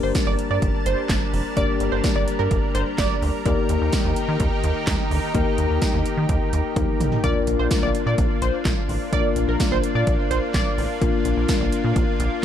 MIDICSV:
0, 0, Header, 1, 6, 480
1, 0, Start_track
1, 0, Key_signature, -2, "major"
1, 0, Tempo, 472441
1, 1592, Time_signature, 4, 2, 24, 8
1, 12648, End_track
2, 0, Start_track
2, 0, Title_t, "Analog polysynth"
2, 0, Program_c, 0, 90
2, 33, Note_on_c, 0, 72, 74
2, 112, Note_off_c, 0, 72, 0
2, 274, Note_on_c, 0, 74, 80
2, 353, Note_off_c, 0, 74, 0
2, 515, Note_on_c, 0, 74, 78
2, 593, Note_off_c, 0, 74, 0
2, 876, Note_on_c, 0, 72, 81
2, 1033, Note_off_c, 0, 72, 0
2, 1593, Note_on_c, 0, 74, 105
2, 1752, Note_off_c, 0, 74, 0
2, 1950, Note_on_c, 0, 72, 81
2, 2030, Note_off_c, 0, 72, 0
2, 2192, Note_on_c, 0, 74, 77
2, 2271, Note_off_c, 0, 74, 0
2, 2428, Note_on_c, 0, 70, 83
2, 2588, Note_off_c, 0, 70, 0
2, 2791, Note_on_c, 0, 72, 89
2, 2871, Note_off_c, 0, 72, 0
2, 3033, Note_on_c, 0, 74, 95
2, 3371, Note_off_c, 0, 74, 0
2, 7354, Note_on_c, 0, 74, 103
2, 7512, Note_off_c, 0, 74, 0
2, 7715, Note_on_c, 0, 72, 74
2, 7793, Note_off_c, 0, 72, 0
2, 7955, Note_on_c, 0, 74, 79
2, 8033, Note_off_c, 0, 74, 0
2, 8196, Note_on_c, 0, 74, 82
2, 8274, Note_off_c, 0, 74, 0
2, 8556, Note_on_c, 0, 72, 83
2, 8713, Note_off_c, 0, 72, 0
2, 9278, Note_on_c, 0, 74, 109
2, 9435, Note_off_c, 0, 74, 0
2, 9637, Note_on_c, 0, 70, 82
2, 9715, Note_off_c, 0, 70, 0
2, 9875, Note_on_c, 0, 72, 79
2, 9953, Note_off_c, 0, 72, 0
2, 10112, Note_on_c, 0, 74, 79
2, 10271, Note_off_c, 0, 74, 0
2, 10471, Note_on_c, 0, 72, 84
2, 10551, Note_off_c, 0, 72, 0
2, 10715, Note_on_c, 0, 74, 91
2, 11052, Note_off_c, 0, 74, 0
2, 12648, End_track
3, 0, Start_track
3, 0, Title_t, "Tine electric piano"
3, 0, Program_c, 1, 4
3, 0, Note_on_c, 1, 58, 76
3, 0, Note_on_c, 1, 62, 68
3, 0, Note_on_c, 1, 67, 69
3, 0, Note_on_c, 1, 70, 84
3, 1554, Note_off_c, 1, 58, 0
3, 1554, Note_off_c, 1, 62, 0
3, 1554, Note_off_c, 1, 67, 0
3, 1554, Note_off_c, 1, 70, 0
3, 1591, Note_on_c, 1, 67, 67
3, 1592, Note_on_c, 1, 58, 74
3, 1592, Note_on_c, 1, 62, 69
3, 1592, Note_on_c, 1, 70, 82
3, 3474, Note_off_c, 1, 58, 0
3, 3474, Note_off_c, 1, 62, 0
3, 3474, Note_off_c, 1, 67, 0
3, 3474, Note_off_c, 1, 70, 0
3, 3510, Note_on_c, 1, 67, 70
3, 3511, Note_on_c, 1, 58, 76
3, 3511, Note_on_c, 1, 63, 67
3, 3511, Note_on_c, 1, 70, 86
3, 5393, Note_off_c, 1, 67, 0
3, 5393, Note_off_c, 1, 70, 0
3, 5394, Note_off_c, 1, 58, 0
3, 5394, Note_off_c, 1, 63, 0
3, 5431, Note_on_c, 1, 58, 76
3, 5431, Note_on_c, 1, 63, 70
3, 5431, Note_on_c, 1, 67, 71
3, 5431, Note_on_c, 1, 70, 86
3, 6843, Note_off_c, 1, 58, 0
3, 6843, Note_off_c, 1, 63, 0
3, 6843, Note_off_c, 1, 67, 0
3, 6843, Note_off_c, 1, 70, 0
3, 6873, Note_on_c, 1, 67, 51
3, 6874, Note_on_c, 1, 58, 59
3, 6874, Note_on_c, 1, 63, 54
3, 6874, Note_on_c, 1, 70, 65
3, 7342, Note_off_c, 1, 58, 0
3, 7342, Note_off_c, 1, 70, 0
3, 7353, Note_off_c, 1, 63, 0
3, 7353, Note_off_c, 1, 67, 0
3, 7353, Note_on_c, 1, 62, 71
3, 7354, Note_on_c, 1, 58, 73
3, 7354, Note_on_c, 1, 65, 71
3, 7354, Note_on_c, 1, 70, 85
3, 9235, Note_off_c, 1, 58, 0
3, 9235, Note_off_c, 1, 62, 0
3, 9235, Note_off_c, 1, 65, 0
3, 9235, Note_off_c, 1, 70, 0
3, 9272, Note_on_c, 1, 62, 69
3, 9273, Note_on_c, 1, 58, 77
3, 9273, Note_on_c, 1, 65, 70
3, 9273, Note_on_c, 1, 70, 86
3, 11154, Note_off_c, 1, 58, 0
3, 11154, Note_off_c, 1, 62, 0
3, 11154, Note_off_c, 1, 70, 0
3, 11155, Note_off_c, 1, 65, 0
3, 11191, Note_on_c, 1, 62, 71
3, 11191, Note_on_c, 1, 70, 83
3, 11192, Note_on_c, 1, 58, 74
3, 11192, Note_on_c, 1, 65, 69
3, 12648, Note_off_c, 1, 58, 0
3, 12648, Note_off_c, 1, 62, 0
3, 12648, Note_off_c, 1, 65, 0
3, 12648, Note_off_c, 1, 70, 0
3, 12648, End_track
4, 0, Start_track
4, 0, Title_t, "Analog synth pad"
4, 0, Program_c, 2, 89
4, 0, Note_on_c, 2, 55, 83
4, 0, Note_on_c, 2, 62, 80
4, 0, Note_on_c, 2, 70, 96
4, 0, Note_on_c, 2, 81, 75
4, 3475, Note_off_c, 2, 55, 0
4, 3475, Note_off_c, 2, 62, 0
4, 3476, Note_off_c, 2, 81, 0
4, 3510, Note_on_c, 2, 51, 86
4, 3510, Note_on_c, 2, 63, 79
4, 3511, Note_on_c, 2, 67, 77
4, 7313, Note_off_c, 2, 51, 0
4, 7313, Note_off_c, 2, 63, 0
4, 7313, Note_off_c, 2, 67, 0
4, 7313, Note_off_c, 2, 70, 0
4, 7355, Note_on_c, 2, 65, 93
4, 7356, Note_on_c, 2, 58, 85
4, 7356, Note_on_c, 2, 62, 78
4, 12648, Note_off_c, 2, 58, 0
4, 12648, Note_off_c, 2, 62, 0
4, 12648, Note_off_c, 2, 65, 0
4, 12648, End_track
5, 0, Start_track
5, 0, Title_t, "Analog synth bass"
5, 0, Program_c, 3, 38
5, 32, Note_on_c, 3, 31, 98
5, 119, Note_off_c, 3, 31, 0
5, 272, Note_on_c, 3, 31, 95
5, 360, Note_off_c, 3, 31, 0
5, 514, Note_on_c, 3, 43, 99
5, 601, Note_off_c, 3, 43, 0
5, 632, Note_on_c, 3, 31, 108
5, 719, Note_off_c, 3, 31, 0
5, 875, Note_on_c, 3, 31, 97
5, 961, Note_off_c, 3, 31, 0
5, 1112, Note_on_c, 3, 31, 98
5, 1199, Note_off_c, 3, 31, 0
5, 1354, Note_on_c, 3, 29, 91
5, 1441, Note_off_c, 3, 29, 0
5, 1593, Note_on_c, 3, 31, 111
5, 1680, Note_off_c, 3, 31, 0
5, 1831, Note_on_c, 3, 31, 97
5, 1919, Note_off_c, 3, 31, 0
5, 1953, Note_on_c, 3, 31, 100
5, 2040, Note_off_c, 3, 31, 0
5, 2193, Note_on_c, 3, 31, 102
5, 2280, Note_off_c, 3, 31, 0
5, 2432, Note_on_c, 3, 43, 98
5, 2520, Note_off_c, 3, 43, 0
5, 2551, Note_on_c, 3, 31, 113
5, 2639, Note_off_c, 3, 31, 0
5, 2793, Note_on_c, 3, 31, 105
5, 2880, Note_off_c, 3, 31, 0
5, 3031, Note_on_c, 3, 31, 102
5, 3119, Note_off_c, 3, 31, 0
5, 3274, Note_on_c, 3, 38, 98
5, 3361, Note_off_c, 3, 38, 0
5, 3512, Note_on_c, 3, 39, 118
5, 3599, Note_off_c, 3, 39, 0
5, 3755, Note_on_c, 3, 39, 106
5, 3841, Note_off_c, 3, 39, 0
5, 3875, Note_on_c, 3, 39, 94
5, 3961, Note_off_c, 3, 39, 0
5, 4114, Note_on_c, 3, 39, 107
5, 4201, Note_off_c, 3, 39, 0
5, 4353, Note_on_c, 3, 51, 106
5, 4440, Note_off_c, 3, 51, 0
5, 4471, Note_on_c, 3, 39, 107
5, 4559, Note_off_c, 3, 39, 0
5, 4713, Note_on_c, 3, 39, 110
5, 4800, Note_off_c, 3, 39, 0
5, 4950, Note_on_c, 3, 39, 110
5, 5038, Note_off_c, 3, 39, 0
5, 5191, Note_on_c, 3, 38, 93
5, 5279, Note_off_c, 3, 38, 0
5, 5432, Note_on_c, 3, 39, 111
5, 5519, Note_off_c, 3, 39, 0
5, 5674, Note_on_c, 3, 39, 96
5, 5761, Note_off_c, 3, 39, 0
5, 5795, Note_on_c, 3, 39, 98
5, 5881, Note_off_c, 3, 39, 0
5, 6033, Note_on_c, 3, 39, 97
5, 6120, Note_off_c, 3, 39, 0
5, 6273, Note_on_c, 3, 51, 102
5, 6360, Note_off_c, 3, 51, 0
5, 6392, Note_on_c, 3, 39, 107
5, 6479, Note_off_c, 3, 39, 0
5, 6634, Note_on_c, 3, 39, 105
5, 6721, Note_off_c, 3, 39, 0
5, 6872, Note_on_c, 3, 39, 96
5, 6959, Note_off_c, 3, 39, 0
5, 7112, Note_on_c, 3, 33, 92
5, 7199, Note_off_c, 3, 33, 0
5, 7354, Note_on_c, 3, 34, 111
5, 7440, Note_off_c, 3, 34, 0
5, 7593, Note_on_c, 3, 34, 98
5, 7680, Note_off_c, 3, 34, 0
5, 7713, Note_on_c, 3, 34, 102
5, 7800, Note_off_c, 3, 34, 0
5, 7953, Note_on_c, 3, 34, 104
5, 8040, Note_off_c, 3, 34, 0
5, 8191, Note_on_c, 3, 46, 102
5, 8279, Note_off_c, 3, 46, 0
5, 8312, Note_on_c, 3, 34, 101
5, 8400, Note_off_c, 3, 34, 0
5, 8551, Note_on_c, 3, 34, 106
5, 8639, Note_off_c, 3, 34, 0
5, 8791, Note_on_c, 3, 34, 108
5, 8879, Note_off_c, 3, 34, 0
5, 9030, Note_on_c, 3, 33, 92
5, 9118, Note_off_c, 3, 33, 0
5, 9272, Note_on_c, 3, 34, 112
5, 9359, Note_off_c, 3, 34, 0
5, 9513, Note_on_c, 3, 34, 100
5, 9600, Note_off_c, 3, 34, 0
5, 9631, Note_on_c, 3, 34, 98
5, 9719, Note_off_c, 3, 34, 0
5, 9869, Note_on_c, 3, 34, 103
5, 9958, Note_off_c, 3, 34, 0
5, 10110, Note_on_c, 3, 46, 96
5, 10198, Note_off_c, 3, 46, 0
5, 10232, Note_on_c, 3, 34, 105
5, 10320, Note_off_c, 3, 34, 0
5, 10473, Note_on_c, 3, 34, 105
5, 10560, Note_off_c, 3, 34, 0
5, 10711, Note_on_c, 3, 34, 103
5, 10799, Note_off_c, 3, 34, 0
5, 10952, Note_on_c, 3, 33, 94
5, 11040, Note_off_c, 3, 33, 0
5, 11192, Note_on_c, 3, 34, 113
5, 11279, Note_off_c, 3, 34, 0
5, 11430, Note_on_c, 3, 34, 104
5, 11518, Note_off_c, 3, 34, 0
5, 11550, Note_on_c, 3, 34, 98
5, 11638, Note_off_c, 3, 34, 0
5, 11790, Note_on_c, 3, 34, 101
5, 11878, Note_off_c, 3, 34, 0
5, 12032, Note_on_c, 3, 46, 99
5, 12119, Note_off_c, 3, 46, 0
5, 12151, Note_on_c, 3, 34, 104
5, 12239, Note_off_c, 3, 34, 0
5, 12393, Note_on_c, 3, 34, 109
5, 12480, Note_off_c, 3, 34, 0
5, 12648, End_track
6, 0, Start_track
6, 0, Title_t, "Drums"
6, 150, Note_on_c, 9, 42, 73
6, 153, Note_on_c, 9, 36, 110
6, 154, Note_on_c, 9, 38, 110
6, 251, Note_off_c, 9, 42, 0
6, 255, Note_off_c, 9, 36, 0
6, 255, Note_off_c, 9, 38, 0
6, 393, Note_on_c, 9, 42, 72
6, 494, Note_off_c, 9, 42, 0
6, 632, Note_on_c, 9, 36, 110
6, 632, Note_on_c, 9, 42, 67
6, 733, Note_off_c, 9, 42, 0
6, 734, Note_off_c, 9, 36, 0
6, 874, Note_on_c, 9, 42, 78
6, 975, Note_off_c, 9, 42, 0
6, 1111, Note_on_c, 9, 36, 121
6, 1112, Note_on_c, 9, 42, 74
6, 1113, Note_on_c, 9, 38, 114
6, 1113, Note_on_c, 9, 39, 95
6, 1213, Note_off_c, 9, 36, 0
6, 1214, Note_off_c, 9, 42, 0
6, 1215, Note_off_c, 9, 38, 0
6, 1215, Note_off_c, 9, 39, 0
6, 1358, Note_on_c, 9, 46, 69
6, 1459, Note_off_c, 9, 46, 0
6, 1592, Note_on_c, 9, 36, 115
6, 1593, Note_on_c, 9, 42, 75
6, 1694, Note_off_c, 9, 36, 0
6, 1695, Note_off_c, 9, 42, 0
6, 1832, Note_on_c, 9, 42, 79
6, 1933, Note_off_c, 9, 42, 0
6, 2070, Note_on_c, 9, 42, 71
6, 2073, Note_on_c, 9, 36, 111
6, 2074, Note_on_c, 9, 38, 115
6, 2171, Note_off_c, 9, 42, 0
6, 2175, Note_off_c, 9, 36, 0
6, 2175, Note_off_c, 9, 38, 0
6, 2313, Note_on_c, 9, 42, 74
6, 2415, Note_off_c, 9, 42, 0
6, 2549, Note_on_c, 9, 42, 68
6, 2551, Note_on_c, 9, 36, 111
6, 2651, Note_off_c, 9, 42, 0
6, 2653, Note_off_c, 9, 36, 0
6, 2792, Note_on_c, 9, 42, 76
6, 2894, Note_off_c, 9, 42, 0
6, 3031, Note_on_c, 9, 36, 121
6, 3031, Note_on_c, 9, 42, 74
6, 3032, Note_on_c, 9, 38, 117
6, 3032, Note_on_c, 9, 39, 95
6, 3132, Note_off_c, 9, 36, 0
6, 3133, Note_off_c, 9, 42, 0
6, 3134, Note_off_c, 9, 38, 0
6, 3134, Note_off_c, 9, 39, 0
6, 3276, Note_on_c, 9, 46, 70
6, 3377, Note_off_c, 9, 46, 0
6, 3511, Note_on_c, 9, 36, 119
6, 3511, Note_on_c, 9, 42, 77
6, 3612, Note_off_c, 9, 42, 0
6, 3613, Note_off_c, 9, 36, 0
6, 3751, Note_on_c, 9, 42, 77
6, 3852, Note_off_c, 9, 42, 0
6, 3987, Note_on_c, 9, 42, 74
6, 3992, Note_on_c, 9, 36, 114
6, 3992, Note_on_c, 9, 38, 113
6, 4089, Note_off_c, 9, 42, 0
6, 4093, Note_off_c, 9, 38, 0
6, 4094, Note_off_c, 9, 36, 0
6, 4230, Note_on_c, 9, 42, 74
6, 4332, Note_off_c, 9, 42, 0
6, 4468, Note_on_c, 9, 42, 70
6, 4471, Note_on_c, 9, 36, 112
6, 4569, Note_off_c, 9, 42, 0
6, 4572, Note_off_c, 9, 36, 0
6, 4710, Note_on_c, 9, 42, 79
6, 4812, Note_off_c, 9, 42, 0
6, 4948, Note_on_c, 9, 42, 76
6, 4949, Note_on_c, 9, 38, 110
6, 4949, Note_on_c, 9, 39, 97
6, 4950, Note_on_c, 9, 36, 120
6, 5050, Note_off_c, 9, 42, 0
6, 5051, Note_off_c, 9, 36, 0
6, 5051, Note_off_c, 9, 38, 0
6, 5051, Note_off_c, 9, 39, 0
6, 5195, Note_on_c, 9, 46, 69
6, 5297, Note_off_c, 9, 46, 0
6, 5431, Note_on_c, 9, 36, 116
6, 5431, Note_on_c, 9, 42, 75
6, 5533, Note_off_c, 9, 36, 0
6, 5533, Note_off_c, 9, 42, 0
6, 5670, Note_on_c, 9, 42, 77
6, 5771, Note_off_c, 9, 42, 0
6, 5910, Note_on_c, 9, 42, 76
6, 5913, Note_on_c, 9, 36, 114
6, 5914, Note_on_c, 9, 38, 114
6, 6011, Note_off_c, 9, 42, 0
6, 6015, Note_off_c, 9, 36, 0
6, 6015, Note_off_c, 9, 38, 0
6, 6152, Note_on_c, 9, 42, 74
6, 6254, Note_off_c, 9, 42, 0
6, 6391, Note_on_c, 9, 42, 68
6, 6393, Note_on_c, 9, 36, 106
6, 6493, Note_off_c, 9, 42, 0
6, 6494, Note_off_c, 9, 36, 0
6, 6634, Note_on_c, 9, 42, 80
6, 6736, Note_off_c, 9, 42, 0
6, 6872, Note_on_c, 9, 36, 125
6, 6872, Note_on_c, 9, 42, 72
6, 6873, Note_on_c, 9, 48, 61
6, 6973, Note_off_c, 9, 36, 0
6, 6974, Note_off_c, 9, 42, 0
6, 6975, Note_off_c, 9, 48, 0
6, 7115, Note_on_c, 9, 45, 94
6, 7118, Note_on_c, 9, 42, 71
6, 7217, Note_off_c, 9, 45, 0
6, 7219, Note_off_c, 9, 42, 0
6, 7234, Note_on_c, 9, 43, 99
6, 7336, Note_off_c, 9, 43, 0
6, 7353, Note_on_c, 9, 36, 118
6, 7354, Note_on_c, 9, 42, 75
6, 7455, Note_off_c, 9, 36, 0
6, 7455, Note_off_c, 9, 42, 0
6, 7591, Note_on_c, 9, 42, 77
6, 7693, Note_off_c, 9, 42, 0
6, 7830, Note_on_c, 9, 42, 72
6, 7834, Note_on_c, 9, 36, 119
6, 7834, Note_on_c, 9, 38, 118
6, 7932, Note_off_c, 9, 42, 0
6, 7936, Note_off_c, 9, 36, 0
6, 7936, Note_off_c, 9, 38, 0
6, 8074, Note_on_c, 9, 42, 75
6, 8176, Note_off_c, 9, 42, 0
6, 8312, Note_on_c, 9, 42, 70
6, 8313, Note_on_c, 9, 36, 111
6, 8414, Note_off_c, 9, 42, 0
6, 8415, Note_off_c, 9, 36, 0
6, 8554, Note_on_c, 9, 42, 81
6, 8656, Note_off_c, 9, 42, 0
6, 8791, Note_on_c, 9, 36, 122
6, 8791, Note_on_c, 9, 42, 72
6, 8792, Note_on_c, 9, 38, 113
6, 8792, Note_on_c, 9, 39, 97
6, 8893, Note_off_c, 9, 36, 0
6, 8893, Note_off_c, 9, 42, 0
6, 8894, Note_off_c, 9, 38, 0
6, 8894, Note_off_c, 9, 39, 0
6, 9035, Note_on_c, 9, 46, 69
6, 9137, Note_off_c, 9, 46, 0
6, 9272, Note_on_c, 9, 36, 116
6, 9273, Note_on_c, 9, 42, 76
6, 9374, Note_off_c, 9, 36, 0
6, 9374, Note_off_c, 9, 42, 0
6, 9511, Note_on_c, 9, 42, 77
6, 9612, Note_off_c, 9, 42, 0
6, 9751, Note_on_c, 9, 42, 73
6, 9754, Note_on_c, 9, 36, 115
6, 9755, Note_on_c, 9, 38, 116
6, 9853, Note_off_c, 9, 42, 0
6, 9855, Note_off_c, 9, 36, 0
6, 9857, Note_off_c, 9, 38, 0
6, 9993, Note_on_c, 9, 42, 78
6, 10094, Note_off_c, 9, 42, 0
6, 10231, Note_on_c, 9, 42, 69
6, 10232, Note_on_c, 9, 36, 113
6, 10333, Note_off_c, 9, 42, 0
6, 10334, Note_off_c, 9, 36, 0
6, 10474, Note_on_c, 9, 42, 76
6, 10576, Note_off_c, 9, 42, 0
6, 10711, Note_on_c, 9, 36, 120
6, 10711, Note_on_c, 9, 42, 74
6, 10712, Note_on_c, 9, 38, 117
6, 10712, Note_on_c, 9, 39, 93
6, 10813, Note_off_c, 9, 36, 0
6, 10813, Note_off_c, 9, 42, 0
6, 10814, Note_off_c, 9, 38, 0
6, 10814, Note_off_c, 9, 39, 0
6, 10955, Note_on_c, 9, 46, 70
6, 11057, Note_off_c, 9, 46, 0
6, 11192, Note_on_c, 9, 36, 118
6, 11192, Note_on_c, 9, 42, 73
6, 11293, Note_off_c, 9, 36, 0
6, 11293, Note_off_c, 9, 42, 0
6, 11431, Note_on_c, 9, 42, 76
6, 11533, Note_off_c, 9, 42, 0
6, 11669, Note_on_c, 9, 42, 72
6, 11673, Note_on_c, 9, 36, 116
6, 11673, Note_on_c, 9, 38, 114
6, 11770, Note_off_c, 9, 42, 0
6, 11774, Note_off_c, 9, 36, 0
6, 11774, Note_off_c, 9, 38, 0
6, 11912, Note_on_c, 9, 42, 76
6, 12014, Note_off_c, 9, 42, 0
6, 12151, Note_on_c, 9, 42, 71
6, 12152, Note_on_c, 9, 36, 112
6, 12253, Note_off_c, 9, 36, 0
6, 12253, Note_off_c, 9, 42, 0
6, 12393, Note_on_c, 9, 42, 80
6, 12495, Note_off_c, 9, 42, 0
6, 12648, End_track
0, 0, End_of_file